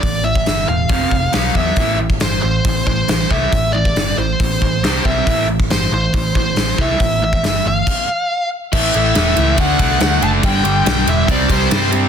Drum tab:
CC |----------------|----------------|----------------|----------------|
RD |----------------|----------------|----------------|----------------|
HH |o---o---o---o---|o---o---o---o---|o---o---o---o---|o---o---o---o---|
SD |----o-------o---|----o-------o---|----o-------o---|----o-------o---|
BD |o--o----o-o---o-|o--o----o-o---o-|o--o----o-o---o-|o--o----o-o---o-|

CC |--------x-------|x---------------|----------------|
RD |----------------|--x-x-x-x-x-x-x-|x-x-x-x-x-x-x-x-|
HH |o---o-----------|----------------|----------------|
SD |----o-----------|----o-------o---|----o-------oo--|
BD |o--o----o-------|o-------o-o-----|o-------o-o-----|